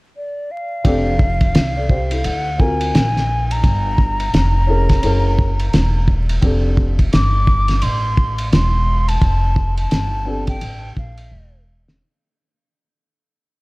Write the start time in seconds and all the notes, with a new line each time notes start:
0.17 D5
0.51 F5
0.84 F1 C4 D4 G4 A4, kick, ride
1.19 kick
1.41 kick, ride
1.55 C2, snare, hi-hat pedal, ride
1.77 A4 D5
1.89 G4 C5, kick
2.11 E4 A4, ride
2.24 D2 F#5, ride
2.58 C4 F4 F#4 A#4 G#5, kick
2.81 ride
2.94 A#1, snare, hi-hat pedal, ride
3.17 snare
3.51 A#5, ride
3.64 G1, kick, ride
3.98 kick
4.20 ride
4.34 F1, snare, hi-hat pedal, ride
4.67 C#4 E4 G#4 A#4
4.89 kick, snare, ride
5.02 F#1 C#4 E4 G#4 A#4, ride
5.39 kick
5.59 ride
5.73 E1, snare, hi-hat pedal, ride
6.08 kick
6.29 ride
6.42 F1 C4 D4 G4 A4, kick, ride
6.77 kick
6.99 kick, ride
7.13 G1 D6, snare, hi-hat pedal, ride
7.47 kick
7.68 snare, ride
7.82 A1 C6, ride
8.17 kick
8.38 ride
8.52 E1 C6, snare, hi-hat pedal, ride
9.08 A5, ride
9.21 F1, kick, ride
9.56 kick
9.77 A5, ride
9.91 G1, snare, hi-hat pedal, ride
10.25 C4 D4 G4 A4
10.47 G5, kick, ride
10.61 A1, ride
10.97 A#1 F5, kick
11.17 ride
11.31 E1
11.88 snare